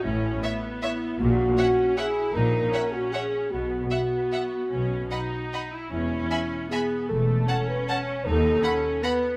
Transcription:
<<
  \new Staff \with { instrumentName = "Violin section" } { \time 3/4 \key b \mixolydian \tempo 4 = 153 r4 e''4 e''4 | r4 fis''4 fis''4 | r4 fis''4 fis''4 | r4 fis''4 fis''4 |
r4 b''4 b''4 | r4 b''4 b''4 | r4 a''4 a''4 | r4 b''4 b''4 | }
  \new Staff \with { instrumentName = "Violin section" } { \time 3/4 \key b \mixolydian r4 <cis'' e''>4 <cis'' e''>4 | r4 <cis'' e''>4 <cis'' e''>4 | r4 <cis'' e''>4 <cis'' e''>4 | r4 e''4 e''4 |
r4 <dis'' fis''>4 <dis'' fis''>4 | r4 <e'' gis''>4 <e'' gis''>4 | r4 fis''4 fis''4 | r4 fis''4 fis''4 | }
  \new Staff \with { instrumentName = "French horn section" } { \time 3/4 \key b \mixolydian e'4. r8 e'4 | fis'2 gis'4 | ais'4. fis'8 gis'4 | fis'2.~ |
fis'2~ fis'8 r8 | e'2 gis'4 | a'4. b'8 cis''4 | a'2 b'4 | }
  \new Staff \with { instrumentName = "Viola section" } { \time 3/4 \key b \mixolydian cis'4 b2 | ais4 cis'4 e'4 | dis'4 cis'2 | b4 b2 |
cis'4 dis'4. e'8 | cis'2 b4 | a4 cis'2 | dis'4 cis'4 b4 | }
  \new Staff \with { instrumentName = "Cello section" } { \clef bass \time 3/4 \key b \mixolydian a,4 r2 | ais,4 r2 | ais,4 r2 | b,4 r2 |
b,4 r2 | e,4 r2 | e,4 r2 | dis,4 r2 | }
  \new Staff \with { instrumentName = "Double bass section" } { \clef bass \time 3/4 \key b \mixolydian a,,4 r2 | ais,,4 r2 | ais,,4 r2 | b,,4 r2 |
b,,4 r2 | e,,4 r2 | e,,4 r2 | dis,4 r2 | }
>>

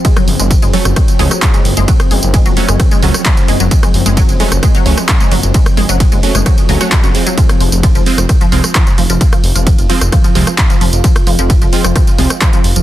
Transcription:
<<
  \new Staff \with { instrumentName = "Ambient pad" } { \time 4/4 \key ges \lydian \tempo 4 = 131 <f c'>1~ | <f c'>1~ | <f c'>1~ | <f c'>1 |
f'1~ | f'1~ | f'1 | }
  \new Staff \with { instrumentName = "Supersaw synth" } { \time 4/4 \key ges \lydian r4. <ges a des'>16 r8. <ges a des'>16 r4 r16 | r4. <ges a des'>16 r8. <ges a des'>16 r4 r16 | r4. <ges a des'>16 r8. <ges a des'>16 r4 r16 | r4. <ges a des'>16 r8. <ges a des'>16 <ges a des'>16 r8 <f aes c'>8~ |
<f aes c'>4. <f aes c'>16 r8. <f aes c'>16 r4 r16 | r4. <f aes c'>16 r8. <f aes c'>16 r4 r16 | r4. <f aes c'>16 r8. <f aes c'>16 r4 r16 | }
  \new Staff \with { instrumentName = "Synth arpeggio sound" } { \clef bass \time 4/4 \key ges \lydian aes16 ges16 r16 aes16 r16 aes16 ges16 r16 aes16 r16 aes16 ges16 r16 aes16 r16 aes16 | ges16 r16 aes16 r16 aes16 ges16 r16 aes16 r16 aes16 ges16 r16 aes16 r16 aes16 ges16 | r16 aes16 r16 aes16 ges16 r16 aes16 r16 aes16 ges16 r16 aes16 r16 aes16 ges16 r16 | aes16 r16 aes16 ges16 r16 aes16 r16 aes16 ges16 r16 ges16 ges'16 aes16 ges'16 r16 ges16 |
f16 r16 f16 r16 f16 f16 r16 f16 r16 f16 f16 r16 f16 r16 f16 f16 | r16 f16 r16 f16 f16 r16 f16 r16 f16 f16 r16 f16 r16 f16 f16 r16 | f16 r16 f16 f16 r16 f16 r16 f16 f16 r16 f16 r16 f16 f16 r16 f16 | }
  \new Staff \with { instrumentName = "Detuned saw bass" } { \clef bass \time 4/4 \key ges \lydian r8 ges,,16 ges,,16 r16 ges,,16 r16 ges,,16 r8 des,16 r8. ges,,16 ges,,16 | r8 ges,,16 ges,,16 r16 ges,,16 r16 ges,,16 r8 des,16 r8. ges,,16 ges,,16 | r8 ges,,16 ges,,16 r16 ges,,16 r16 ges,,16 r8 des,16 r8. ges,,16 ges,,16 | r8 ges,,16 ges,,16 r16 ges,,16 r16 ges,,16 r8 des,16 r8 ges,,16 r8 |
r8 f,,16 f,,16 r16 f,,16 r16 f,,16 r8 c,16 r8. f,,16 f,,16 | r8 f,,16 f,,16 r16 f,,16 r16 f,,16 r8 c,16 r8. f,,16 f,,16 | r8 f,,16 f,,16 r16 f,,16 r16 f,,16 r8 c,16 r8. f,,16 f,,16 | }
  \new DrumStaff \with { instrumentName = "Drums" } \drummode { \time 4/4 <hh bd cymr tamb>16 <hh ss tamb>16 hho16 <hh tamb>16 <hh bd cymr tamb>16 <hh tamb>16 hho16 <hh ss tamb>16 <hh bd cymr ss tamb>16 <hh tamb>16 hho16 <hh ss tamb>16 <hc hh bd cymr tamb>16 <hh tamb>16 hho16 <hh tamb>16 | <hh bd cymr tamb>16 <hh ss tamb>16 hho16 <hh tamb>16 <hh bd cymr tamb>16 <hh tamb>16 hho16 <hh ss tamb>16 <hh bd cymr ss tamb>16 <hh tamb>16 hho16 <hh ss tamb>16 <hc hh bd cymr tamb>16 <hh tamb>16 hho16 <hh tamb>16 | <hh bd cymr tamb>16 <hh ss tamb>16 hho16 <hh tamb>16 <hh bd cymr tamb>16 <hh tamb>16 hho16 <hh ss tamb>16 <hh bd cymr ss tamb>16 <hh tamb>16 hho16 <hh ss tamb>16 <hc hh bd cymr tamb>16 <hh tamb>16 hho16 <hh tamb>16 | <hh bd cymr tamb>16 <hh ss tamb>16 hho16 <hh tamb>16 <hh bd cymr tamb>16 <hh tamb>16 hho16 <hh ss tamb>16 <hh bd cymr ss tamb>16 <hh tamb>16 hho16 <hh ss tamb>16 <hc hh bd cymr tamb>16 <hh tamb>16 hho16 <hh tamb>16 |
<hh bd cymr tamb>16 <hh ss tamb>16 hho16 <hh tamb>16 <hh bd cymr tamb>16 <hh tamb>16 hho16 <hh ss tamb>16 <hh bd cymr ss tamb>16 <hh tamb>16 hho16 <hh ss tamb>16 <hc hh bd cymr tamb>16 <hh tamb>16 hho16 <hh tamb>16 | <hh bd cymr tamb>16 <hh ss tamb>16 hho16 <hh tamb>16 <hh bd cymr tamb>16 <hh tamb>16 hho16 <hh ss tamb>16 <hh bd cymr ss tamb>16 <hh tamb>16 hho16 <hh ss tamb>16 <hc hh bd cymr tamb>16 <hh tamb>16 hho16 <hh tamb>16 | <hh bd cymr tamb>16 <hh ss tamb>16 hho16 <hh tamb>16 <hh bd cymr tamb>16 <hh tamb>16 hho16 <hh ss tamb>16 <hh bd cymr ss tamb>16 <hh tamb>16 hho16 <ss tamb>16 <hc hh bd cymr tamb>16 <hh tamb>16 hho16 <hh tamb>16 | }
>>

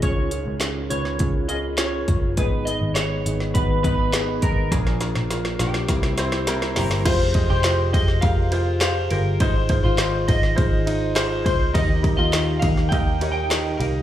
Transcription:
<<
  \new Staff \with { instrumentName = "Clean electric guitar" } { \time 4/4 \key cis \mixolydian \tempo 4 = 102 cis''4. cis''4 dis''8 cis''4 | b'8 dis''8 cis''4 b'8 b'4 ais'8 | gis'4. g'2 bes'8 | \key f \minor c''8. c''8. ees''8 f''4 f''8 bes'8 |
c''8. c''8. ees''4. r8 c''8 | ees''8. ees''8. f''8 g''8. g''8. bes'8 | }
  \new Staff \with { instrumentName = "Grand piano" } { \time 4/4 \key cis \mixolydian <cis' eis' gis'>8 <cis' eis' gis'>8 <cis' eis' gis'>8 <cis' eis' b'>8 <cis' eis' gis'>8 <cis' eis' gis'>8 <cis' eis' gis'>8 <cis' eis' gis'>8 | <b dis' gis'>8 <b dis' gis'>8 <b dis' gis'>8 <b dis' gis'>8 <b dis' fis'>8 <b dis' b'>8 <b dis' gis'>8 <b dis' gis'>8 | <d' eis' ais'>8 <d' eis' ais'>8 <d' eis' ais'>8 <d' eis' ais'>8 <c' e' bes'>8 <c' e' c''>8 <c' e' bes'>8 <c' e' g'>8 | \key f \minor <f' g' aes' c''>8 <f' g' aes' ees''>8 <f' g' aes' c''>8 <f' g' aes' c''>8 <f' g' aes' bes'>8 <f' g' aes' c''>8 <f' g' aes' c''>8 <f' g' aes' c''>8 |
<ees' f' aes' c''>8 <ees' f' aes' c''>8 <ees' f' aes' c''>8 <ees' f' aes' c''>8 <ees' f' aes' c''>8 <ees' f' aes' ees''>8 <ees' f' aes' c''>8 <ees' f' aes' c''>8 | <ees' g' bes' ees''>8 <ees' g' bes' ees''>8 <ees' g' bes' f''>8 <ees' g' bes' ees''>8 <ees' g' bes' ees''>8 <ees' g' bes' des''>8 <ees' g' bes' ees''>8 <ees' g' bes' f''>8 | }
  \new Staff \with { instrumentName = "Grand piano" } { \clef bass \time 4/4 \key cis \mixolydian gis,4. r2 r8 | <gis, dis>4. r2 r8 | <ais, eis>4. r8 <c g>4. r8 | \key f \minor c4. r2 r8 |
<aes, ees>4. r2 r8 | bes,4. r2 r8 | }
  \new Staff \with { instrumentName = "Steel-string acoustic guitar" } { \time 4/4 \key cis \mixolydian r1 | r1 | r1 | \key f \minor f'16 r8 g'8. r4 f'8. r8. |
ees'16 r8 f'8. r4 ees'8. r8. | ees'16 r8 f'8. r4 ees'8. r8. | }
  \new Staff \with { instrumentName = "Tonewheel organ" } { \time 4/4 \key cis \mixolydian << { <cis cis' ais'>1 | <gis dis'>1 | <eis d'>2 <c g e'>2 | \key f \minor r1 |
r1 | <ees ees' bes'>1 | } \\ { eis'1 | b1 | ais1 | r1 |
r1 | g'1 | } >> }
  \new Staff \with { instrumentName = "Picked electric bass" } { \clef bass \time 4/4 \key cis \mixolydian cis,8. cis,8. cis,8 cis,4. fis,,8 | gis,,8. gis,,8. gis,,8 gis,,4. gis,,8 | ais,,8. ais,,8. ais,,8 c,4. g,,8 | \key f \minor f,,8. f,,8. f,,8 f,,4. g,,8 |
aes,,8. aes,,8. aes,,8 aes,,4. des,8 | ees,8. ees,8. ees,8 ees,4. c,8 | }
  \new DrumStaff \with { instrumentName = "Drums" } \drummode { \time 4/4 <hh bd>8 hh8 <hc hh sn>8 hh16 sn16 <hh bd>8 hh8 <hc hh sn>8 <hh bd>8 | <hh bd>8 hh8 <hc hh sn>8 hh16 sn16 <hh bd>8 <hh bd>8 <hc hh sn>8 <hh bd>8 | <hh bd sn>16 sn16 <hh sn>16 sn16 <hh sn>16 sn16 <hh sn>16 sn16 <hh bd sn>16 sn16 <hh sn>16 sn16 <hh sn>16 sn16 <hho sn>16 sn16 | <cymc bd cymr>8 <bd cymr>8 <hc cymr sn>8 <bd cymr>16 sn16 <bd cymr>8 cymr8 <hc cymr sn>8 cymr8 |
<bd cymr>8 <bd cymr>8 <hc cymr sn>8 <bd cymr>16 sn16 <bd cymr>8 cymr8 <hc cymr sn>8 <bd cymr>8 | <bd cymr>8 <bd cymr>8 <hc cymr sn>8 <bd cymr>16 sn16 <bd cymr>8 cymr8 <hc cymr sn>8 cymr8 | }
>>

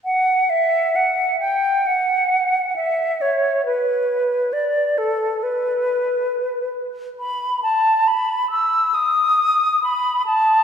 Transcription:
\new Staff \with { instrumentName = "Flute" } { \time 4/4 \key fis \phrygian \tempo 4 = 68 fis''8 e''8 fis''8 g''8 fis''4 e''8 cis''8 | b'4 d''8 a'8 b'4. r8 | b''8 a''8 b''8 e'''8 dis'''4 b''8 a''8 | }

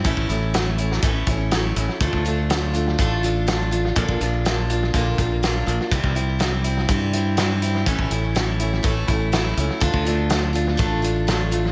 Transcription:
<<
  \new Staff \with { instrumentName = "Steel-string acoustic guitar" } { \time 4/4 \key d \minor \tempo 4 = 123 <a, e a cis' e'>8 <a cis' e'>8 <e a cis' e'>8 <a cis' e'>8 <a, e a cis' e'>8 <a cis' e'>8 <e a cis' e'>8 <a cis' e'>8 | <d a d' f'>8 <a d' f'>8 <d a d' f'>8 <a d' f'>8 <d a d' f'>8 <a d' f'>8 <d a d' f'>8 <a d' f'>8 | <bes, d bes d' f'>8 <bes d' f'>8 <d bes d' f'>8 <bes d' f'>8 <bes, d bes d' f'>8 <bes d' f'>8 <d bes d' f'>8 <bes d' f'>8 | <c e g c' e'>8 <g c' e'>8 <e g c' e'>8 <g c' e'>8 <c e g c' e'>8 <g c' e'>8 <e g c' e'>8 <g c' e'>8 |
<a, e a cis' e'>8 <a cis' e'>8 <e a cis' e'>8 <a cis' e'>8 <a, e a cis' e'>8 <a cis' e'>8 <e a cis' e'>8 <a cis' e'>8 | <d a d' f'>8 <a d' f'>8 <d a d' f'>8 <a d' f'>8 <d a d' f'>8 <a d' f'>8 <d a d' f'>8 <a d' f'>8 | }
  \new Staff \with { instrumentName = "Fingered electric bass" } { \clef bass \time 4/4 \key d \minor a,,16 a,,16 a,,4. a,,8 a,,4 a,,16 r16 | d,16 d,4.~ d,16 a,,2 | bes,,16 bes,,16 bes,,4. bes,,8 bes,,4 bes,,16 r16 | c,16 c,4.~ c,16 g,2 |
a,,16 a,,16 a,,4. a,,8 a,,4 cis,16 r16 | d,16 d,4.~ d,16 a,,2 | }
  \new DrumStaff \with { instrumentName = "Drums" } \drummode { \time 4/4 <hh bd>16 bd16 hh8 <hh sn>8 hh16 sn16 <hh bd>8 <hh bd>8 <hh sn>8 hh8 | <hh bd>16 bd16 hh8 <hh sn>8 hh8 <hh bd>8 hh8 <hh sn>8 hh8 | <hh bd>16 bd16 hh8 <hh sn>8 hh8 <hh bd>8 <hh bd>8 <hh sn>8 hh8 | <hh bd>16 bd16 hh8 <hh sn>8 hh8 <hh bd>8 hh8 <hh sn>8 hh8 |
<hh bd>16 bd16 hh8 <hh sn>8 hh8 <hh bd>8 <hh bd>8 <hh sn>8 hh8 | <hh bd>16 bd16 hh8 <hh sn>8 hh8 <hh bd>8 hh8 <hh sn>8 hh8 | }
>>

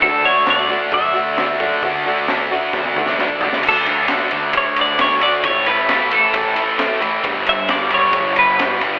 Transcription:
<<
  \new Staff \with { instrumentName = "Clean electric guitar" } { \time 4/4 \key d \major \tempo 4 = 133 a'8 cis''8 d''4 e''2~ | e''2. r4 | a'2 cis''8 d''8 cis''8 d''8 | cis''8 b'4 a'2 r8 |
r8 e''8 d''8 cis''4 b'4. | }
  \new Staff \with { instrumentName = "Steel-string acoustic guitar" } { \time 4/4 \key d \major <d e a d' fis'>8 <a d' fis'>8 <e a d' fis'>8 <d e a d' fis'>8 <e a d' fis'>8 <d e a d' fis'>8 <e a d' fis'>8 <a d' fis'>8 | <d e a d' fis'>8 <a d' fis'>8 <e a d' fis'>8 <d e a d' fis'>8 <e a d' fis'>8 <d e a d' fis'>8 <e a d' fis'>8 <a d' fis'>8 | r1 | r1 |
r1 | }
  \new Staff \with { instrumentName = "Distorted electric guitar" } { \clef bass \time 4/4 \key d \major <d a d'>8 <d a d'>8 <d a d'>8 <d a d'>8 <d a d'>8 <d a d'>8 <d a d'>8 <d a d'>8 | <d a d'>8 <d a d'>8 <d a d'>8 <d a d'>8 <d a d'>8 <d a d'>8 <d a d'>8 <d a d'>8 | <d a d'>8 <d a d'>8 <d a d'>8 <d a d'>8 <d a d'>8 <d a d'>8 <d a d'>8 <d a d'>8 | <a, e a>8 <a, e a>8 <a, e a>8 <a, e a>8 <a, e a>8 <a, e a>8 <a, e a>8 <a, e a>8 |
<g, d g>8 <g, d g>8 <g, d g>8 <g, d g>8 <g, d g>8 <g, d g>8 <g, d g>8 <g, d g>8 | }
  \new Staff \with { instrumentName = "Fingered electric bass" } { \clef bass \time 4/4 \key d \major d,2 fis,8 d,4 fis,16 r16 | d,2 d,4 b,,8 cis,8 | d,4. d,8 d,2 | a,,2 a,,8 r4. |
g,,4. g,,8 g,,2 | }
  \new DrumStaff \with { instrumentName = "Drums" } \drummode { \time 4/4 <hho bd>4 <hho sn>4 <hho bd>4 <hho sn>8 bd8 | <hho bd>4 <hho sn>4 <bd sn>16 tommh16 toml16 sn16 sn16 bd16 tomfh16 sn16 | <cymc bd>8 cymr8 <cymr sn>8 cymr8 <bd cymr>8 cymr8 <cymr sn>8 cymr8 | <bd cymr>8 cymr8 <cymr sn>8 cymr8 <bd cymr>8 cymr8 <cymr sn>8 cymr8 |
<bd cymr>8 cymr8 <cymr sn>8 cymr8 <bd cymr>8 cymr8 <cymr sn>8 cymr8 | }
>>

